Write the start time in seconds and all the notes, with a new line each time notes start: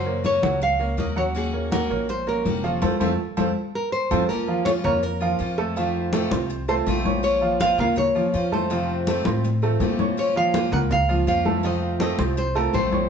Already playing: F#2 C#3 F#3 A#3 C#4 F#4 C5
0.06 A#3 A#4 C#5, high conga
0.24 C#3 F#3 A#3 C#4 F#4 C#5, high conga
0.43 C#2 F#3 F#4 F#5, high conga
0.61 F5, muted steel-string acoustic guitar stroke, high conga
0.79 A#3 C#4 F#4 A#4 C#5, high conga
0.97 D#2 C#3 F#3 A#3 C#4 F#4 A#4 C#5 D#5, high conga
1.16 F#3 A#3 C#4 F#4 C#5 F#5, high conga
1.35 D#3 A#3 C#4 F#4 G#4, high conga
1.53 A#3 A#4 C#5, high conga
1.72 D#3 F#3 A#3 C#4 F#4 A#4 F#5, high conga
1.90 A#1 A#3 A#4 C#5, high conga
2.09 C5, muted steel-string acoustic guitar stroke, high conga
2.27 A#3 C#4 F#4 A#4 C#5, high conga
2.45 F1 D#3 A#3 C#4 F#4, high conga
2.64 F3 A#3 C#4 F4 F#4 A4 F5, high conga
2.82 F2 F3 A3 C4 F4 A4 C5, high conga
3.00 F2 F3 A3 C4 F4 A4 C5, high conga
3.37 F2 F3 A3 C4 F4 A4 C5, high conga
3.75 A#4
3.92 C5
4.11 F2 F3 A3 C4 F4 A4 C5, high conga
4.29 F3 A#3 C#4 F4 A#4, high conga
4.48 F3 F4 F5, high conga
4.65 F3 A#3 C#4 F4 C#5, high conga
4.84 F2 A#3 C#4 F4 A#4 C#5 A#5, high conga, low conga
5.03 A#4, muted steel-string acoustic guitar stroke, high conga
5.21 F3 A#3 C#4 F4 F5, high conga
5.39 F2 F3 A#3 C#4 F4, high conga
5.58 A3 A4 A5
5.76 C3 D#3 F3 A3 C4 F4 F5, high conga
5.95 high conga
6.13 C3 D#3 A3 C4 F4 A4 A5, high conga
6.31 C2 A3 C4 F4 C5 C6, high conga
6.50 muted steel-string acoustic guitar stroke, high conga
6.68 A3 C4 F4 A4 C5 A5, high conga
6.86 A#1 C3 D#3 A3 C4 F4 D#5, high conga
7.05 C#5 C#6, high conga
7.23 F3 A#3 C#4 F4 C#5, high conga
7.41 F3 F4 F5, high conga
7.60 F3 A#3 C#4 F4 F5, high conga
7.78 A#2 A#3 C#4 F4 A#4 F5 A#5, high conga, low conga
7.96 C#5, muted steel-string acoustic guitar stroke, high conga, low conga
8.15 F3 A#3 C#4 F4 F5, high conga
8.34 F2 F3 A#3 C#4 F4, high conga
8.52 A3 A4 C5 A5, high conga
8.70 C3 D#3 F3 A3 C4 F4 F5, high conga
8.89 high conga
9.07 C3 D#3 A3 C4 F4 A4 A5, high conga
9.25 A2 A3 C4 F4 C5 C6, high conga
9.44 muted steel-string acoustic guitar stroke, high conga
9.62 A3 C4 F4 A4 A5, high conga
9.80 A#2 C3 D#3 A3 C4 F4, high conga
9.99 C#5 C#6, high conga
10.17 F3 A#3 C#4 F4 C#5, high conga
10.36 F3 F4 F5, high conga
10.54 F3 A#3 C#4 F4, high conga
10.72 C#2 A#3 C#4 F4 A#4 F#5 A#5, high conga, low conga
10.91 F5, muted steel-string acoustic guitar stroke, high conga, low conga
11.09 F3 A#3 C#4 F4 F5, high conga
11.27 F2 F3 A#3 C#4 F4 F5, high conga
11.45 A3 A4 A5, high conga
11.63 C3 D#3 F3 A3 C4 F4 D#5 F5, high conga
11.82 high conga
12.00 C3 D#3 A3 C4 F4 A4 D#5 A5, high conga
12.19 C2 A3 C4 F4 C5 C6, high conga
12.37 C5, muted steel-string acoustic guitar stroke, high conga
12.55 A3 C4 F4 A4 A#4 A5, high conga
12.73 A#1 C3 D#3 A3 C4 F4 C5, high conga
12.92 C#5 C#6, high conga